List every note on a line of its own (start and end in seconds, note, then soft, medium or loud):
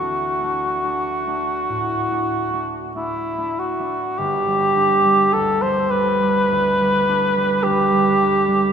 0.00 3.09 D2 soft
0.00 0.42 A3 soft
0.00 0.42 D4 soft
0.00 2.79 F#4 medium
0.43 0.83 A3 soft
0.43 0.83 D4 soft
0.84 1.26 A3 soft
0.84 1.26 D4 soft
1.27 2.10 A3 soft
1.27 2.10 D4 soft
1.69 4.23 A2 soft
2.11 2.52 A3 soft
2.11 2.53 D4 soft
2.53 2.94 A3 soft
2.53 2.95 D4 soft
2.95 3.36 A3 soft
2.95 3.37 D4 soft
2.95 3.61 E4 soft
3.38 3.78 A3 soft
3.38 3.79 D4 soft
3.59 4.20 F#4 medium
3.79 4.24 A3 soft
3.79 4.75 D4 soft
4.18 8.08 G1 soft
4.18 5.34 G4 medium
4.47 5.03 G3 soft
4.76 5.93 D4 soft
5.04 5.63 G3 soft
5.33 6.51 D2 soft
5.33 5.63 A4 medium
5.62 6.21 G3 soft
5.62 5.92 C5 medium
5.90 7.07 D4 soft
5.90 7.65 B4 medium
6.23 6.79 G3 soft
6.52 7.64 D2 soft
6.81 7.36 G3 soft
7.08 8.21 D4 soft
7.37 7.91 G3 soft
7.63 8.73 D2 soft
7.63 8.73 G4 medium
7.92 8.47 G3 soft
8.22 8.73 D4 soft
8.48 8.73 G3 soft